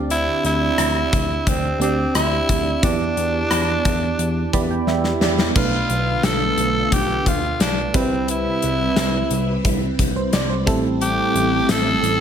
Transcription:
Already playing: D2 D3 C4 D4 G4 D5
0.10 E4, closed hi-hat
0.44 D2 E4, closed hi-hat
0.78 D2, cross-stick, closed hi-hat
1.13 D2, kick, closed hi-hat
1.47 D2 C4, kick, closed hi-hat
1.80 D2 C4 D4 G4 D5, closed hi-hat
2.14 D2 E4, cross-stick, closed hi-hat
2.49 D2, kick, closed hi-hat
2.83 E2 E3 B3 D4 E4 G4 D5, kick, closed hi-hat
3.17 E2, closed hi-hat
3.51 E2, cross-stick, closed hi-hat
3.85 E2, kick, closed hi-hat
4.19 E2, closed hi-hat
4.53 E2 B3 E4 G4 D5 B5, kick, closed hi-hat
4.71 G5
4.87 E2 E5, snare
5.04 snare
5.21 E2 D5, snare
5.38 snare
5.55 B1 B2 D3 A3 B3 D4 F4 B4, kick, crash
5.90 B1, closed hi-hat
6.23 B1 A4, snare, closed hi-hat
6.57 B1, closed hi-hat
6.92 B1 G4, kick, closed hi-hat
7.26 D2 F4, kick, closed hi-hat
7.60 B1 D4, snare, closed hi-hat
7.94 C2 C3 G3 C4 E4 B4, kick, closed hi-hat
8.28 E4, closed hi-hat
8.62 C2, closed hi-hat
8.96 C2, snare, closed hi-hat
9.31 C2, closed hi-hat
9.65 C2, kick, closed hi-hat
9.99 C2, kick, closed hi-hat
10.16 C5
10.33 C2 D5, snare, closed hi-hat
10.50 C5
10.66 A1 A2 G3 A3 C4 E4 A4 E5, kick, closed hi-hat
11.01 G4, closed hi-hat
11.35 A1, closed hi-hat
11.69 A1 A4, snare, closed hi-hat, tambourine
12.03 A1, closed hi-hat

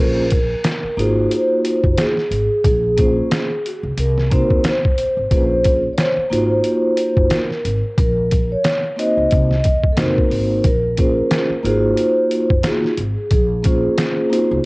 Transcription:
Already playing: A#1 A#3 C#4 F4
0.00 G#4 A#4 C5
0.30 kick, closed hi-hat
0.64 snare, closed hi-hat
0.84 muted upright bass stroke
0.97 G#1 A#3 D#4 F4 F#4 G#4 C5, closed hi-hat
1.31 C5, closed hi-hat
1.65 closed hi-hat
1.84 F#1, kick
1.98 G#4, snare, closed hi-hat
2.17 snare
2.31 G#1, closed hi-hat
2.64 A#1 G#4, kick, closed hi-hat
2.97 A#3 C#4 F4 G#4 C5, kick, closed hi-hat
3.31 snare, closed hi-hat
3.66 F#4, closed hi-hat
3.83 C#2
3.97 C2 A#4, closed hi-hat
4.18 snare
4.30 A#3 C4 D#4 F#4 C5, kick, closed hi-hat
4.50 D#2, kick
4.64 C5, snare, closed hi-hat
4.85 kick
4.98 closed hi-hat
5.17 G#1
5.31 A#1 A#3 C#4 F4 G#4 B4 C5, kick, closed hi-hat
5.41 C5
5.64 kick, closed hi-hat
5.93 C#5
5.98 C5, snare, closed hi-hat
6.17 muted upright bass stroke
6.30 G#1 A#3 D#4 F4 F#4 C5, closed hi-hat
6.64 C5, closed hi-hat
6.97 closed hi-hat
7.17 F#1, kick
7.30 A#4, snare, closed hi-hat
7.50 snare
7.65 G#1, closed hi-hat
7.98 A#1 A#4, kick, closed hi-hat
8.31 kick, closed hi-hat
8.52 C#5
8.64 snare, closed hi-hat
8.96 A#3 C4 D#4 F#4 C5 D#5, closed hi-hat
9.17 C#2
9.31 C2, kick, closed hi-hat
9.51 snare
9.64 D#2, kick, closed hi-hat
9.84 kick
9.92 A#3 A4
9.97 F#1 C4 D#4 F#4 A#4 C5, snare, closed hi-hat
10.18 kick
10.30 G#1, open hi-hat
10.64 A#1 A#4, kick, closed hi-hat
10.97 A#3 C#4 F4 G#4 C5, kick, closed hi-hat
11.31 snare, closed hi-hat
11.50 muted upright bass stroke
11.63 G#1 A#3 D#4 F4 F#4 G#4 C5, closed hi-hat
11.97 C5, closed hi-hat
12.31 closed hi-hat
12.50 F#1, kick
12.63 A#3 D#4 F4 F#4 G#4, snare, closed hi-hat
12.84 snare
12.97 G#1, closed hi-hat
13.30 A#1 G#4, kick, closed hi-hat
13.63 A#3 C#4 F4 G#4 C5, kick, closed hi-hat
13.98 snare, closed hi-hat
14.30 A#3 C4 D#4 F4 F#4 C5, closed hi-hat
14.51 C#2

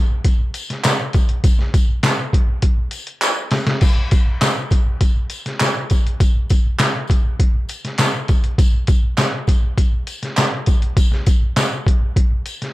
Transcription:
0.25 kick, closed hi-hat, tambourine
0.54 closed hi-hat, tambourine
0.70 snare, closed hi-hat
0.84 snare, clap, closed hi-hat, tambourine
1.13 kick, closed hi-hat, tambourine
1.29 closed hi-hat
1.44 kick, closed hi-hat, tambourine
1.59 snare
1.74 kick, closed hi-hat, tambourine
2.03 snare, clap, closed hi-hat, tambourine
2.33 kick, closed hi-hat
2.62 kick, closed hi-hat
2.91 closed hi-hat, tambourine
3.07 closed hi-hat
3.21 clap, closed hi-hat, tambourine
3.51 snare, closed hi-hat, tambourine
3.67 snare, closed hi-hat
3.81 kick, crash, tambourine
4.11 kick, closed hi-hat, tambourine
4.41 snare, clap, closed hi-hat, tambourine
4.70 kick, closed hi-hat, tambourine
5.01 kick, closed hi-hat, tambourine
5.30 closed hi-hat, tambourine
5.46 snare, closed hi-hat
5.60 snare, clap, closed hi-hat, tambourine
5.90 kick, closed hi-hat, tambourine
6.07 closed hi-hat
6.20 kick, closed hi-hat, tambourine
6.50 kick, closed hi-hat, tambourine
6.79 snare, clap, closed hi-hat, tambourine
7.07 kick, closed hi-hat, tambourine
7.40 kick, closed hi-hat
7.69 closed hi-hat, tambourine
7.85 snare, closed hi-hat
7.98 snare, clap, closed hi-hat, tambourine
8.28 kick, closed hi-hat, tambourine
8.44 closed hi-hat
8.58 kick, closed hi-hat, tambourine
8.87 kick, closed hi-hat, tambourine
9.18 snare, clap, closed hi-hat, tambourine
9.47 kick, closed hi-hat, tambourine
9.77 kick, closed hi-hat, tambourine
10.07 closed hi-hat, tambourine
10.23 snare, closed hi-hat
10.37 snare, clap, closed hi-hat, tambourine
10.66 kick, closed hi-hat, tambourine
10.82 closed hi-hat
10.97 kick, closed hi-hat, tambourine
11.12 snare
11.26 kick, closed hi-hat, tambourine
11.56 snare, clap, closed hi-hat, tambourine
11.87 kick, closed hi-hat
12.16 kick, closed hi-hat
12.46 closed hi-hat, tambourine
12.62 snare, closed hi-hat

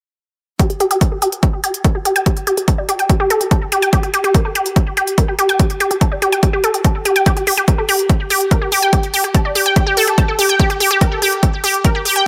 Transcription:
0.59 G4, kick, closed hi-hat
0.70 G4, closed hi-hat
0.80 G4, closed hi-hat
0.91 G4, closed hi-hat
1.01 A#4, kick, closed hi-hat
1.12 A4
1.22 G4, closed hi-hat
1.32 closed hi-hat
1.43 kick, closed hi-hat
1.64 G4, closed hi-hat
1.74 closed hi-hat
1.84 A#4, kick, closed hi-hat
1.95 G4
2.05 G4, closed hi-hat
2.16 G5, closed hi-hat
2.26 G4, kick, closed hi-hat
2.37 closed hi-hat
2.47 G4, closed hi-hat
2.57 G4, closed hi-hat
2.68 A5, kick, closed hi-hat
2.78 D5
2.89 G4, closed hi-hat
2.99 G5, closed hi-hat
3.09 G4, kick, closed hi-hat
3.20 G4
3.30 A4, closed hi-hat
3.41 G4, closed hi-hat
3.51 A5, kick, closed hi-hat
3.72 G4, closed hi-hat
3.82 G5, closed hi-hat
3.93 G4, kick, closed hi-hat
4.03 G4, closed hi-hat
4.14 G4, closed hi-hat
4.24 G4, closed hi-hat
4.34 A#4, kick, closed hi-hat
4.45 A4
4.55 G4, closed hi-hat
4.66 closed hi-hat
4.76 kick, closed hi-hat
4.97 G4, closed hi-hat
5.07 closed hi-hat
5.18 A#4, kick, closed hi-hat
5.28 G4
5.39 G4, closed hi-hat
5.49 G5, closed hi-hat
5.59 G4, kick, closed hi-hat
5.70 closed hi-hat
5.80 G4, closed hi-hat
5.91 G4, closed hi-hat
6.01 A5, kick, closed hi-hat
6.12 D5
6.22 G4, closed hi-hat
6.32 G5, closed hi-hat
6.43 G4, kick, closed hi-hat
6.53 G4
6.64 A4, closed hi-hat
6.74 G4, closed hi-hat
6.84 A5, kick, closed hi-hat
7.05 G4, closed hi-hat
7.16 G5, closed hi-hat
7.26 G4, kick, closed hi-hat
7.37 G4, closed hi-hat
7.47 G4, open hi-hat
7.57 G4, closed hi-hat
7.68 A#4, kick, closed hi-hat
7.78 A4
7.89 G4, open hi-hat
7.99 closed hi-hat
8.09 kick, closed hi-hat
8.30 G4, open hi-hat
8.41 closed hi-hat
8.51 A#4, kick, closed hi-hat
8.62 G4
8.72 G4, open hi-hat
8.82 G5, closed hi-hat
8.93 G4, kick, closed hi-hat
9.03 closed hi-hat
9.14 G4, open hi-hat
9.24 G4, closed hi-hat
9.35 A5, kick, closed hi-hat
9.45 D5
9.55 G4, open hi-hat
9.66 G5, closed hi-hat
9.76 G4, kick, closed hi-hat
9.87 G4
9.97 A4, open hi-hat
10.07 G4, closed hi-hat
10.18 A5, kick, closed hi-hat
10.28 A4
10.39 G4, open hi-hat
10.49 G5, closed hi-hat
10.60 G4, kick, closed hi-hat
10.70 G4, closed hi-hat
10.80 G4, open hi-hat
10.91 G4, closed hi-hat
11.01 A#4, kick, closed hi-hat
11.12 A4
11.22 G4, open hi-hat
11.32 closed hi-hat
11.43 kick, closed hi-hat
11.64 G4, open hi-hat
11.74 closed hi-hat
11.85 A#4, kick, closed hi-hat
11.95 G4
12.05 G4, open hi-hat
12.16 G5, closed hi-hat

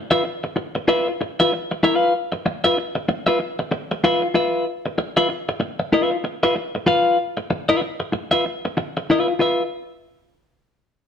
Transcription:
0.11 F4 B4 E5
0.24 muted clean electric guitar stroke
0.44 muted clean electric guitar stroke
0.56 muted clean electric guitar stroke
0.75 muted clean electric guitar stroke
0.88 F4 B4 E5
1.08 muted clean electric guitar stroke
1.21 muted clean electric guitar stroke
1.40 F4 B4 E5
1.53 muted clean electric guitar stroke
1.71 muted clean electric guitar stroke
1.83 E4 A#4 E5
1.95 F4 B4 F5
2.32 muted clean electric guitar stroke
2.46 muted clean electric guitar stroke
2.64 F4 B4 E5
2.78 muted clean electric guitar stroke
2.95 muted clean electric guitar stroke
3.09 muted clean electric guitar stroke
3.27 F4 B4 E5
3.40 muted clean electric guitar stroke
3.59 muted clean electric guitar stroke
3.71 muted clean electric guitar stroke
3.91 muted clean electric guitar stroke
4.04 F4 B4 E5
4.22 muted clean electric guitar stroke
4.34 F4 B4 E5
4.86 muted clean electric guitar stroke
4.98 muted clean electric guitar stroke
5.17 F4 B4 E5
5.29 muted clean electric guitar stroke
5.49 muted clean electric guitar stroke
5.60 muted clean electric guitar stroke
5.80 muted clean electric guitar stroke
5.93 F4 B4 E5
6.11 muted clean electric guitar stroke
6.24 muted clean electric guitar stroke
6.43 F4 B4 E5
6.56 muted clean electric guitar stroke
6.75 muted clean electric guitar stroke
6.86 F4 B4 F5
7.37 muted clean electric guitar stroke
7.50 muted clean electric guitar stroke
7.69 F4 B4 E5
7.82 muted clean electric guitar stroke
8.00 muted clean electric guitar stroke
8.12 muted clean electric guitar stroke
8.31 F4 B4 E5
8.46 muted clean electric guitar stroke
8.65 muted clean electric guitar stroke
8.77 muted clean electric guitar stroke
8.97 muted clean electric guitar stroke
9.10 F4 B4 E5
9.28 muted clean electric guitar stroke
9.39 F4 B4 E5

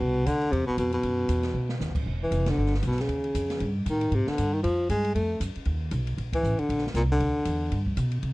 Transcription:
Already playing: B2
0.01 C2
0.26 D2 D3, kick, hi-hat pedal, ride
0.41 ride
0.52 E2 C3, kick, ride
0.67 B2, muted upright bass stroke
0.77 F2 B2, kick, hi-hat pedal, ride
0.92 B2, ride
1.03 F#2, kick, ride
1.28 E2, kick, hi-hat pedal, ride
1.43 snare, ride
1.54 B2
1.69 snare
1.80 D#2, snare, hi-hat pedal
1.89 B1
1.95 A1, kick, crash
2.06 E1, kick
2.23 E3
2.31 F1, kick, hi-hat pedal, ride
2.46 snare, ride
2.50 D3
2.58 G1
2.66 snare
2.74 snare
2.82 B1, kick, hi-hat pedal, ride
2.87 B2
2.91 snare
2.98 C#3, snare, ride
3.08 D#2, kick, ride
3.24 ride
3.34 F2, kick, hi-hat pedal, ride
3.50 snare, ride
3.60 G2, kick, ride
3.86 A2 D#3, kick, hi-hat pedal, ride
4.01 ride
4.11 G#2 C3, kick, ride
4.27 D3, muted upright bass stroke, snare
4.38 G2, kick, hi-hat pedal, ride
4.54 D#3
4.63 F2 F3, kick, ride
4.89 G2 G#3, kick, hi-hat pedal, ride
5.04 ride
5.15 F2 A3, kick, ride
5.40 F#2, kick, hi-hat pedal, ride
5.55 muted upright bass stroke, ride
5.65 D#2, kick, ride
5.91 B1, kick, hi-hat pedal, ride
6.07 ride
6.17 A#1, kick, ride
6.33 E3, kick, ride
6.43 A1, hi-hat pedal
6.59 D3, ride
6.69 A#1, kick, ride
6.78 snare
6.87 snare
6.94 C2 A#2, kick, hi-hat pedal, ride
7.12 D3
7.20 D2, kick, ride
7.45 E2, kick, hi-hat pedal, ride
7.71 G2, kick, ride
7.86 kick
7.97 B2, hi-hat pedal, ride
8.12 ride
8.23 C3, kick, ride

